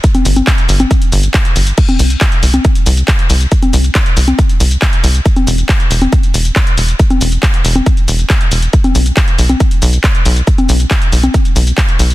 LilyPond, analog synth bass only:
\new Staff \with { instrumentName = "Analog synth bass" } { \clef bass \time 4/4 \key e \minor \tempo 4 = 138 r8 g,,8 r8 g,,8 r8 g,,8 r8 g,,8 | r8 c,8 r8 c,8 r8 c,8 r8 c,8 | r8 c,8 r8 c,8 r8 c,8 r8 c,8 | r8 e,,8 r8 e,,8 r8 e,,8 r8 e,,8 |
r8 e,,8 r8 e,,8 r8 e,,8 r8 e,,8 | r8 b,,8 r8 b,,8 r8 b,,8 r8 b,,8 | r8 b,,8 r8 b,,8 r8 b,,8 r8 b,,8 | }